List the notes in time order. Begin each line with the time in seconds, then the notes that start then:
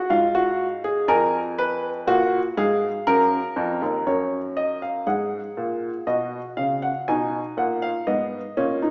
0.10 G#2 F4 F5
0.35 F#4
0.84 G#4
1.08 F2 A#4 G#5
1.58 B4
2.07 A#2 F#4 F#5
2.57 G#2 G#4 F5
3.07 F#2 A#4
3.56 F2
3.82 D#2
4.06 F#2 A#4 C#5
4.57 D#5
4.82 F5
5.07 G#2 G#4 F#5
5.57 A#2
6.07 B2 F#4 D#5
6.57 C#3 F5
6.82 F#5
7.08 B2 D#4 G#5
7.57 A#2 F#5
7.82 F5
8.07 G#2 B3 D#5
8.57 A#2 C#4
8.82 D#4